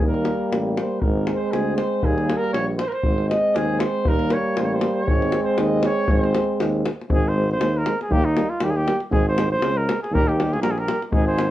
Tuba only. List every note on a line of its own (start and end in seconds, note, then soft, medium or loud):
0.01 0.29 D#2 medium
0.52 0.80 A1 medium
1.03 1.31 G#1 loud
1.53 1.81 D2 medium
2.03 2.32 D#2 loud
2.53 2.82 A#1 medium
3.04 3.33 G#1 medium
3.56 3.84 D#2 medium
4.06 4.34 D#2 medium
4.57 4.85 A1 medium
5.07 5.35 G#1 medium
5.58 5.86 D#2 loud
6.08 6.36 G#1 loud
6.60 6.87 D#2 medium
7.10 7.62 G#1 loud
7.61 7.88 D#2 medium
8.10 8.38 D#2 loud
8.61 8.89 D#2 medium
9.10 9.62 G#1 loud
9.60 9.89 C#2 loud
10.11 10.62 D#2 loud
10.61 10.89 A#1 medium
11.12 11.51 G#1 loud